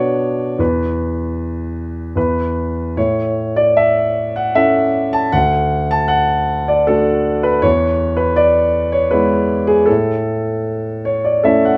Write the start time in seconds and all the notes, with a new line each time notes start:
Already playing: B2 B3 D4 F#4 C#5 D5
0.59 E2 B4
2.16 E2 B4
2.97 A2 C#5
3.56 D5
3.77 E5
4.36 F#5
4.55 C#4 E4 A4 E5
5.13 A5
5.32 D2 F#5
5.91 A5
6.08 F#5
6.68 D5
6.87 A3 D4 F#4 A4
7.43 B4
7.62 E2 C#5
8.17 B4
8.36 D5
8.92 C#5
9.11 G#3 B3 E4 B4
9.67 G#4
9.86 A2 A4
11.05 C#5
11.25 D5
11.43 A3 C#4 E4 A4 E5
11.65 F#5